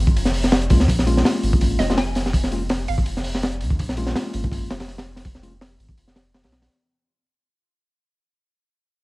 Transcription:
Already playing: sub bass G#1
0.07 kick
0.15 sub bass F1, open hi-hat
0.25 snare
0.34 open hi-hat
0.44 snare
0.52 snare, open hi-hat
0.62 closed hi-hat
0.70 sub bass D#2, tine electric piano G#3 A#3 C#4 F4, kick, open hi-hat
0.80 snare
0.88 sub bass A#1, kick, open hi-hat
0.99 snare
1.07 tine electric piano G#3 A#3 C#4 F4, open hi-hat
1.17 snare
1.25 snare, open hi-hat
1.43 sub bass G#1, open hi-hat
1.53 kick
1.61 kick, open hi-hat
1.79 sub bass F1, synth pluck D#5, snare, open hi-hat
1.89 tine electric piano G#3 A#3 C#4 F4, snare
1.97 synth pluck G#5, snare, open hi-hat
2.15 snare, open hi-hat
2.26 snare
2.33 kick, open hi-hat
2.44 snare
2.52 tine electric piano G#3 A#3 C#4 F4, open hi-hat
2.69 snare, open hi-hat
2.88 sub bass G#1, synth pluck F5, open hi-hat
2.98 kick
3.06 sub bass F1, open hi-hat
3.17 snare
3.24 open hi-hat
3.35 snare
3.43 snare, open hi-hat
3.52 closed hi-hat
3.61 sub bass D#2, open hi-hat
3.70 kick
3.79 sub bass A#1, kick, open hi-hat
3.89 snare
3.97 tine electric piano G#3 A#3 C#4 F4, open hi-hat
4.07 snare
4.16 snare, open hi-hat
4.34 sub bass G#1, open hi-hat
4.44 kick
4.52 kick, open hi-hat
4.70 sub bass F1, snare, open hi-hat
4.80 snare, open hi-hat
4.88 snare, open hi-hat
4.98 snare, open hi-hat
5.16 snare, open hi-hat
5.25 kick, open hi-hat
5.35 snare
5.43 tine electric piano G#3 A#3 C#4 F4, open hi-hat
5.61 snare, open hi-hat
5.79 sub bass G#1, open hi-hat
5.89 kick
5.97 sub bass F1, open hi-hat
6.08 snare
6.16 snare, open hi-hat
6.34 snare, open hi-hat
6.44 sub bass C#2, snare, open hi-hat
6.52 sub bass A#1, snare, open hi-hat
6.62 snare, open hi-hat

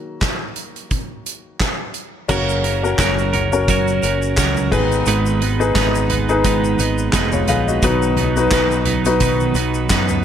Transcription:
Already playing: grand piano D#3 F#3 A#3 F#4
0.22 kick, snare, clap, closed hi-hat
0.56 closed hi-hat
0.76 closed hi-hat
0.91 kick, closed hi-hat
1.26 closed hi-hat
1.60 kick, snare, clap, closed hi-hat
1.94 closed hi-hat
2.28 fingered electric bass F#1, grand piano C#3 C#4 F#4 A#4, clean electric guitar F#3 C#4 F#4 A#4, kick, crash, shaker
2.49 shaker
2.64 clean electric guitar C#4 F#4 A#4, closed hi-hat
2.83 grand piano C#4 F#4 A#4, shaker
2.98 fingered electric bass F#1, clean electric guitar F#3 C#4 F#4 A#4, kick, snare, clap, closed hi-hat, shaker
3.19 shaker
3.33 clean electric guitar C#4 F#4 A#4, closed hi-hat, floor tom
3.52 grand piano C#4 F#4 A#4, shaker
3.68 clean electric guitar F#3 C#4 F#4 A#4, kick, closed hi-hat, shaker
3.88 shaker
4.02 fingered electric bass F#1, clean electric guitar C#4 F#4 A#4, closed hi-hat, shaker
4.22 shaker
4.37 fingered electric bass C#2, clean electric guitar F#3 C#4 F#4 A#4, kick, snare, clap, closed hi-hat, shaker
4.57 floor tom, shaker
4.71 fingered electric bass G#1, grand piano G#2 D#3 D#4 G#4 B4, clean electric guitar G#3 B3 D#4 B4, kick, floor tom, crash, shaker
4.92 shaker
5.06 fingered electric bass G#1, clean electric guitar G#2 D#3 G#3 B3 D#4 B4, closed hi-hat, shaker
5.26 shaker
5.41 clean electric guitar G#3 B3 D#4 B4, closed hi-hat
5.60 grand piano D#4 G#4 B4, shaker
5.75 fingered electric bass G#1, clean electric guitar G#3 B3 D#4 B4, kick, snare, clap, closed hi-hat, shaker
5.95 shaker
6.10 clean electric guitar G#3 B3 D#4 B4, closed hi-hat, floor tom
6.29 grand piano D#4 G#4 B4, shaker
6.44 clean electric guitar G#2 D#3 G#3 B3 D#4 B4, kick, closed hi-hat, shaker
6.64 shaker
6.79 fingered electric bass G#1, clean electric guitar G#3 B3 D#4 B4, closed hi-hat, shaker
6.98 shaker
7.13 fingered electric bass F1, clean electric guitar G#3 B3 D#4 B4, kick, snare, clap, closed hi-hat, shaker
7.32 grand piano F4 C#5, floor tom, shaker
7.47 fingered electric bass A#1, clean electric guitar G#3 B3 D#4 B4, grand piano G#4 F5, closed hi-hat, floor tom, shaker
7.68 grand piano F#4 D#5, shaker
7.83 fingered electric bass B1, clean electric guitar B2 D#3 F#3 B3 D#4 B4, grand piano B2 F#3 D#4 F#4 B4, kick, closed hi-hat, shaker
8.02 shaker
8.17 clean electric guitar F#3 B3 D#4 B4, closed hi-hat, floor tom
8.36 grand piano D#4 F#4 B4, shaker
8.51 fingered electric bass B1, clean electric guitar F#3 B3 D#4 B4, kick, snare, clap, closed hi-hat, shaker
8.71 shaker
8.85 clean electric guitar F#3 B3 D#4 B4, closed hi-hat, floor tom
9.05 grand piano D#4 F#4 B4, closed hi-hat, shaker
9.20 clean electric guitar B2 D#3 F#3 B3 D#4 B4, kick, closed hi-hat, shaker
9.40 shaker
9.55 fingered electric bass B1, clean electric guitar F#3 B3 D#4 B4, closed hi-hat, shaker
9.74 shaker
9.90 fingered electric bass F#2, clean electric guitar F#3 B3 D#4 B4, kick, snare, clap, closed hi-hat, shaker
10.08 floor tom, shaker

